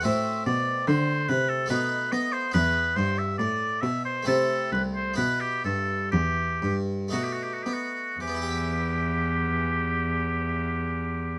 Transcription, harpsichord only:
<<
  \new Staff \with { instrumentName = "Harpsichord" } { \time 3/4 \key e \minor \tempo 4 = 65 <a c' fis'>2 <a b dis'>4 | <b e'>2 <a c' e'>4 | <b e'>2 <a dis' fis'>4 | <e b e' g' e''>2. | }
  \new Staff \with { instrumentName = "Harpsichord" } { \clef bass \time 3/4 \key e \minor a,8 b,8 d8 c8 b,8 b8 | e,8 g,8 a,8 b,8 c8 c,8 | b,8 g,8 e,8 g,8 b,8 b8 | r2. | }
>>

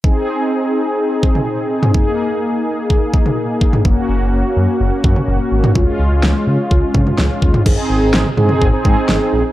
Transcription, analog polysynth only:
\new Staff \with { instrumentName = "Analog polysynth" } { \time 4/4 \key aes \major \tempo 4 = 126 <c' ees' aes'>1 | <bes ees' aes'>1 | <bes des' ges'>1 | <aes des' f'>1 |
<c' ees' aes'>4~ <c' ees' aes'>16 r16 <c' ees' aes'>8. <c' ees' aes'>4. r16 | }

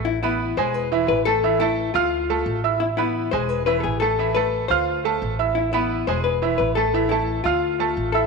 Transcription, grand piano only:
\new Staff \with { instrumentName = "Grand piano" } { \time 4/4 \key a \minor \tempo 4 = 174 r8 <b b' b''>4 <gis gis' gis''>4 <e e' e''>4 <a a' a''>8 | <e e' e''>8 <a a' a''>4 <f' f'' f'''>4 <a a' a''>4 <e' e'' e'''>8~ | <e' e'' e'''>8 <b b' b''>4 <gis gis' gis''>4 <e e' e''>4 <a a' a''>8 | <e e' e''>8 <a a' a''>4 <f' f'' f'''>4 <a a' a''>4 <e' e'' e'''>8~ |
<e' e'' e'''>8 <b b' b''>4 <gis gis' gis''>4 <e e' e''>4 <a a' a''>8 | <e e' e''>8 <a a' a''>4 <f' f'' f'''>4 <a a' a''>4 <e' e'' e'''>8 | }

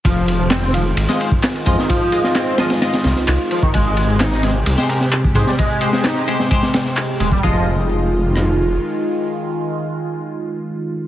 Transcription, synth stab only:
\new Staff \with { instrumentName = "Synth stab" } { \time 4/4 \key f \minor \tempo 4 = 130 r2 r16 <aes f' ees''>16 <aes f' c''>16 r8. <aes f' ees''>16 r16 | r8 <aes f' ees''>16 <aes f' ees''>8. <aes f' ees''>8 <aes f' ees''>2 | r2 r16 <aes g' c''>16 <aes g' bes'>16 r8. <aes g' c''>16 r16 | r8 <aes g' c''>16 <aes g' c''>8. <aes g' c''>8 <aes g' c''>2 |
<aes f' ees''>1~ | <aes f' ees''>1 | }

